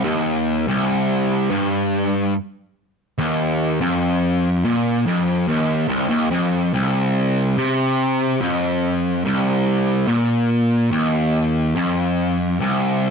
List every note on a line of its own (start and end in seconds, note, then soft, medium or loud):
0.04 0.66 D#2 loud
0.68 1.50 C2 loud
1.51 2.33 G2 loud
3.19 3.80 D#2 loud
3.81 4.63 F2 loud
4.64 5.05 A#2 loud
5.06 5.47 F2 loud
5.47 5.88 D#2 loud
5.88 6.08 C2 medium
6.09 6.30 D#2 loud
6.31 6.72 F2 loud
6.73 7.56 C2 loud
7.57 8.40 C3 medium
8.41 9.23 F2 loud
9.25 10.07 C2 loud
10.07 10.90 A#2 loud
10.91 11.74 D#2 loud
11.75 12.58 F2 loud
12.60 13.10 C2 loud